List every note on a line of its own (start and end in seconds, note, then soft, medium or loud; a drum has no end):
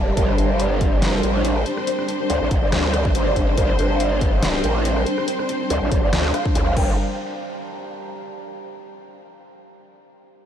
0.00 0.15 E1 loud
0.00 6.73 G3 medium
0.00 0.13 D4 medium
0.00 6.75 G4 medium
0.00 0.15 A#4 medium
0.00 6.77 D5 medium
0.00 1.26 A#5 medium
0.07 0.13 G4 medium
0.17 0.37 G1 medium
0.17 6.73 C4 medium
0.17 0.24 A#4 loud
0.17 6.73 C5 medium
0.17 kick loud
0.17 closed hi-hat medium
0.28 0.34 D4 medium
0.28 cross-stick soft
0.38 0.97 G1 medium
0.38 0.45 D4 medium
0.38 closed hi-hat soft
0.50 0.56 D4 medium
0.59 0.66 D5 medium
0.59 closed hi-hat medium
0.71 0.77 D4 medium
0.81 0.88 D4 medium
0.81 kick loud
0.81 closed hi-hat soft
0.97 1.22 F#1 medium
1.02 1.09 D4 medium
1.02 snare loud
1.02 closed hi-hat medium
1.13 1.19 D4 medium
1.13 6.77 C6 medium
1.23 1.64 A1 medium
1.23 1.30 A#4 medium
1.23 closed hi-hat soft
1.35 1.41 D4 medium
1.45 1.51 D4 medium
1.45 closed hi-hat medium
1.56 1.62 A#4 medium
1.56 cross-stick soft
1.66 1.73 D4 medium
1.66 closed hi-hat soft
1.77 1.83 D4 medium
1.77 cross-stick medium
1.87 1.94 C5 medium
1.87 closed hi-hat medium
1.99 2.05 D4 medium
1.99 cross-stick medium
2.08 2.15 D4 medium
2.08 closed hi-hat soft
2.20 2.26 D4 medium
2.30 2.39 D2 loud
2.30 2.37 D5 medium
2.30 closed hi-hat medium
2.41 2.50 A1 medium
2.41 2.47 D4 medium
2.51 2.71 G1 loud
2.51 2.58 D4 medium
2.51 kick loud
2.51 closed hi-hat medium
2.62 2.68 D5 medium
2.72 3.13 D2 medium
2.72 2.79 D4 medium
2.72 cross-stick medium
2.72 snare loud
2.72 closed hi-hat medium
2.84 2.90 D4 medium
2.94 3.00 D5 medium
2.94 cross-stick medium
2.94 closed hi-hat soft
3.05 3.11 D4 medium
3.05 kick loud
3.15 3.56 G1 loud
3.15 3.22 D4 medium
3.15 closed hi-hat medium
3.26 3.32 D5 medium
3.36 3.43 D4 medium
3.36 kick medium
3.36 closed hi-hat soft
3.47 3.53 D4 medium
3.57 3.77 G1 loud
3.57 3.64 A#4 loud
3.57 kick loud
3.57 closed hi-hat medium
3.69 3.75 D4 medium
3.69 cross-stick medium
3.79 4.62 G1 loud
3.79 3.86 D4 medium
3.79 closed hi-hat medium
3.90 3.96 D4 medium
4.00 4.07 D5 medium
4.00 closed hi-hat medium
4.11 4.17 D4 medium
4.21 4.28 D4 medium
4.21 kick loud
4.21 closed hi-hat medium
4.43 4.49 D4 medium
4.43 snare loud
4.43 closed hi-hat medium
4.54 4.60 D4 medium
4.64 5.05 A1 medium
4.64 4.71 A#4 medium
4.64 closed hi-hat medium
4.75 4.81 D4 medium
4.85 4.92 D4 medium
4.85 closed hi-hat medium
4.97 5.02 A#4 medium
4.97 cross-stick soft
5.06 5.13 D4 medium
5.06 closed hi-hat medium
5.18 5.24 D4 medium
5.18 cross-stick medium
5.28 5.34 C5 medium
5.28 closed hi-hat medium
5.39 5.45 D4 medium
5.39 cross-stick medium
5.49 5.56 D4 medium
5.49 closed hi-hat medium
5.60 5.66 D4 medium
5.70 5.80 D2 medium
5.70 5.77 D5 medium
5.70 closed hi-hat medium
5.82 5.90 A1 medium
5.82 5.88 D4 medium
5.92 6.11 G1 loud
5.92 5.98 D4 medium
5.92 kick loud
5.92 closed hi-hat medium
6.03 6.09 D5 medium
6.13 6.33 D2 loud
6.13 6.20 D4 medium
6.13 cross-stick medium
6.13 snare loud
6.13 closed hi-hat medium
6.24 6.30 D4 medium
6.34 6.41 F5 loud
6.34 cross-stick medium
6.34 closed hi-hat medium
6.45 6.51 D4 medium
6.45 kick loud
6.55 6.76 D2 loud
6.55 6.62 D4 medium
6.55 closed hi-hat medium
6.67 6.73 F5 loud
6.77 6.96 G1 loud
6.77 6.97 G3 medium
6.77 6.96 D4 medium
6.77 8.43 G4 medium
6.77 6.96 A#4 medium
6.77 6.93 G5 medium
6.77 kick loud
6.77 crash medium
6.83 8.43 D5 medium
7.11 8.64 A5 medium
7.17 8.64 A#5 medium